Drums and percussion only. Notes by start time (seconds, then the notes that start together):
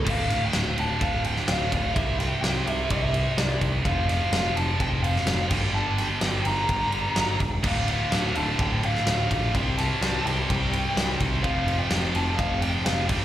0.06 kick, crash
0.30 snare, ride
0.53 snare, ride
0.78 ride
1.01 kick, ride
1.24 ride
1.37 snare
1.48 snare, ride
1.72 kick, ride
1.96 kick, ride
2.20 snare, ride
2.44 snare, ride
2.67 ride
2.90 kick, ride
3.14 ride
3.38 snare, ride
3.61 kick, ride
3.85 kick, ride
4.09 snare, ride
4.33 snare, ride
4.57 ride
4.80 kick, ride
5.04 ride
5.16 snare
5.27 snare, ride
5.50 kick, crash
5.98 snare, ride
6.21 snare, ride
6.45 ride
6.69 kick, ride
6.92 ride
7.16 snare, ride
7.40 kick, ride
7.64 kick, crash
7.88 ride
8.12 snare, ride
8.35 ride
8.59 kick, ride
8.83 ride
8.95 snare
9.07 snare, ride
9.31 kick, ride
9.55 kick, ride
9.78 snare, ride
10.02 snare, ride
10.27 ride
10.50 kick, ride
10.73 ride
10.97 snare, ride
11.20 kick, ride
11.44 kick, ride
11.68 ride
11.91 snare, ride
12.15 ride
12.39 kick, ride
12.62 ride
12.86 snare, ride
13.09 kick, crash